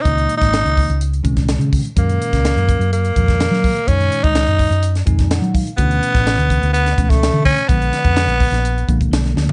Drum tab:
HH |xxxxxxoxxxxxxxox|xxxxxxxxxxxxx-ox|xxxxxxoxxxxxxxox|xxxxxxxxxxxxx-ox|
SD |---oo------oo---|---oo------ooo--|----o----o-oo---|---oo----o-oo---|
FT |----------------|----------------|----------------|----------------|
BD |o--o--o---oo--o-|o--o--o---oo--o-|o--o--o---oo--o-|o--o--o---oo--o-|

HH |xxxxxxoxxxxxxx--|
SD |--o-o--o----ooo-|
FT |---------------o|
BD |o--o--o---oo----|